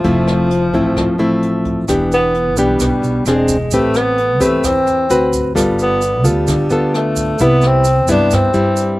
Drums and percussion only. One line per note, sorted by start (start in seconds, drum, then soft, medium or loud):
0.04 kick medium
0.04 closed hi-hat soft
0.27 cross-stick medium
0.27 closed hi-hat soft
0.50 closed hi-hat soft
0.74 kick medium
0.74 closed hi-hat soft
0.97 kick medium
0.97 cross-stick medium
0.97 closed hi-hat soft
1.20 closed hi-hat soft
1.43 closed hi-hat soft
1.65 kick medium
1.65 closed hi-hat soft
1.88 kick medium
1.88 cross-stick medium
1.88 closed hi-hat soft
1.88 shaker medium
2.11 closed hi-hat soft
2.11 shaker soft
2.34 closed hi-hat soft
2.57 closed hi-hat soft
2.57 shaker medium
2.80 kick medium
2.80 cross-stick medium
2.80 closed hi-hat soft
2.80 shaker medium
3.03 closed hi-hat soft
3.03 shaker soft
3.26 cross-stick medium
3.26 closed hi-hat soft
3.26 shaker medium
3.48 kick medium
3.48 closed hi-hat soft
3.48 shaker medium
3.71 kick medium
3.71 closed hi-hat soft
3.71 shaker medium
3.94 cross-stick medium
3.94 closed hi-hat soft
3.94 shaker soft
4.18 closed hi-hat soft
4.40 kick medium
4.40 closed hi-hat soft
4.40 shaker medium
4.64 kick medium
4.64 cross-stick medium
4.64 closed hi-hat soft
4.64 shaker medium
4.87 closed hi-hat soft
4.87 shaker soft
5.10 closed hi-hat soft
5.10 shaker medium
5.33 kick medium
5.33 closed hi-hat soft
5.33 shaker medium
5.56 kick medium
5.56 cross-stick medium
5.56 closed hi-hat soft
5.56 shaker medium
5.79 closed hi-hat soft
5.79 shaker soft
6.02 closed hi-hat soft
6.02 shaker medium
6.25 closed hi-hat soft
6.25 shaker medium
6.47 kick medium
6.47 cross-stick medium
6.47 closed hi-hat soft
6.47 shaker medium
6.70 closed hi-hat soft
6.70 shaker soft
6.94 cross-stick medium
6.94 closed hi-hat soft
7.16 kick medium
7.16 closed hi-hat soft
7.16 shaker medium
7.39 kick medium
7.39 closed hi-hat soft
7.39 shaker medium
7.61 cross-stick medium
7.61 closed hi-hat soft
7.61 shaker soft
7.84 closed hi-hat soft
7.84 shaker medium
8.08 kick medium
8.08 closed hi-hat soft
8.08 shaker medium
8.31 kick medium
8.31 cross-stick medium
8.31 closed hi-hat soft
8.31 shaker medium
8.54 closed hi-hat soft
8.54 shaker soft
8.77 closed hi-hat soft
8.77 shaker soft